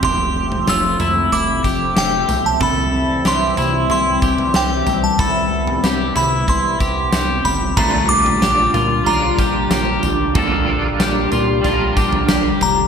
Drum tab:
CC |----------------|----------------|----------------|x---------------|
TB |x---x-x-x-x-x-x-|x---x-x-x-x-x-x-|x---x-x-x-x-x-x-|x---x-x-x-x-x-x-|
SD |----o-------o---|----o-------o---|----o-------o---|----o-------o---|
FT |o--o--o-o-----o-|o-----o-o--o--o-|o--o--o-o-----o-|o--o--o-o-----o-|
BD |o---------o-----|o---------o-----|o-------o-o-----|o---------o-----|

CC |----------------|
TB |x---x-x-x-x-x-x-|
SD |----o-------o---|
FT |o-----o-o--o--o-|
BD |o---------o-----|